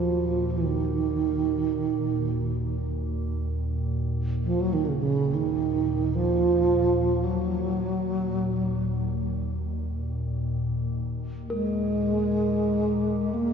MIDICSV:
0, 0, Header, 1, 4, 480
1, 0, Start_track
1, 0, Key_signature, -6, "minor"
1, 0, Tempo, 500000
1, 12993, End_track
2, 0, Start_track
2, 0, Title_t, "Singing bowl"
2, 0, Program_c, 0, 14
2, 0, Note_on_c, 0, 66, 45
2, 3631, Note_off_c, 0, 66, 0
2, 11041, Note_on_c, 0, 70, 51
2, 12993, Note_off_c, 0, 70, 0
2, 12993, End_track
3, 0, Start_track
3, 0, Title_t, "Bass flute"
3, 0, Program_c, 1, 73
3, 0, Note_on_c, 1, 53, 58
3, 489, Note_on_c, 1, 51, 62
3, 504, Note_off_c, 1, 53, 0
3, 2789, Note_off_c, 1, 51, 0
3, 4268, Note_on_c, 1, 53, 74
3, 4420, Note_on_c, 1, 54, 81
3, 4435, Note_off_c, 1, 53, 0
3, 4542, Note_on_c, 1, 51, 76
3, 4556, Note_off_c, 1, 54, 0
3, 4656, Note_on_c, 1, 49, 68
3, 4670, Note_off_c, 1, 51, 0
3, 4779, Note_off_c, 1, 49, 0
3, 4783, Note_on_c, 1, 49, 70
3, 5127, Note_on_c, 1, 51, 69
3, 5142, Note_off_c, 1, 49, 0
3, 5901, Note_on_c, 1, 53, 78
3, 5916, Note_off_c, 1, 51, 0
3, 6949, Note_on_c, 1, 54, 70
3, 6964, Note_off_c, 1, 53, 0
3, 9019, Note_off_c, 1, 54, 0
3, 11056, Note_on_c, 1, 56, 73
3, 12804, Note_on_c, 1, 58, 66
3, 12818, Note_off_c, 1, 56, 0
3, 12993, Note_off_c, 1, 58, 0
3, 12993, End_track
4, 0, Start_track
4, 0, Title_t, "Ambient pad"
4, 0, Program_c, 2, 92
4, 0, Note_on_c, 2, 39, 57
4, 0, Note_on_c, 2, 46, 55
4, 11698, Note_off_c, 2, 46, 0
4, 11703, Note_off_c, 2, 39, 0
4, 11709, Note_on_c, 2, 46, 66
4, 11714, Note_on_c, 2, 39, 66
4, 12993, Note_off_c, 2, 39, 0
4, 12993, Note_off_c, 2, 46, 0
4, 12993, End_track
0, 0, End_of_file